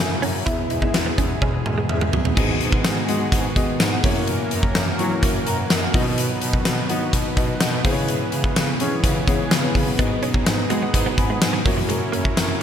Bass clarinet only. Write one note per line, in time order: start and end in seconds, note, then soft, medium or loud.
0.00 0.16 F#2 medium
0.23 0.40 F#2 medium
0.47 0.64 E2 loud
0.71 0.88 E2 loud
0.94 1.12 E2 loud
1.18 1.35 E2 loud
1.42 1.59 E2 loud
1.66 1.83 E2 medium
1.90 2.07 E2 loud
2.13 2.31 E2 medium
2.37 2.54 G#2 loud
2.61 2.78 G#2 loud
2.85 3.02 G#2 loud
3.09 3.26 G#3 loud
3.32 3.49 G#2 loud
3.80 3.97 G#2 loud
4.04 4.38 F#2 loud
4.52 4.69 F#2 loud
4.75 4.92 F#2 loud
4.99 5.16 F#3 loud
5.23 5.40 F#2 loud
5.47 5.64 F#2 loud
5.71 5.88 F#2 loud
5.94 6.29 B2 loud
6.42 6.59 B2 loud
6.66 6.83 B2 loud
6.90 7.07 B3 loud
7.13 7.30 B2 loud
7.37 7.54 B2 loud
7.61 7.86 B2 loud
7.85 8.19 C#3 loud
8.32 8.50 C#3 loud
8.56 8.73 C#3 loud
8.80 8.97 C#4 loud
9.04 9.21 C#3 loud
9.28 9.45 C#3 medium
9.51 9.69 C#3 loud
9.75 9.92 C#3 loud
9.99 10.16 G#2 loud
10.47 10.64 G#2 loud
10.70 10.88 G#3 loud
10.94 11.11 G#2 loud
11.18 11.35 G#2 medium
11.42 11.59 G#2 loud
11.66 12.00 F#2 loud
12.13 12.31 F#2 loud
12.37 12.54 F#2 loud